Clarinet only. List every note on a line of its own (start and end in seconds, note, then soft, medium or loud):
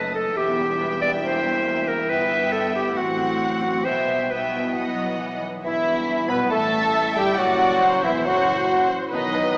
0.00 0.14 B4 medium
0.15 0.38 A4 medium
0.37 1.01 G4 medium
1.02 1.11 D5 medium
1.24 1.90 C5 medium
1.88 2.12 A#4 medium
2.10 2.54 B4 medium
2.52 2.74 A4 medium
2.75 2.99 G4 medium
2.98 3.62 F#4 medium
3.62 3.86 F#4 medium
3.85 4.32 C5 medium
4.31 5.20 B4 medium
5.66 6.31 E4 medium
6.30 6.52 B4 medium
6.52 7.16 A4 medium
7.18 7.41 G4 medium
7.40 8.03 F#4 medium
8.03 8.13 E4 medium
8.26 8.90 F#4 medium
9.13 9.58 B4 medium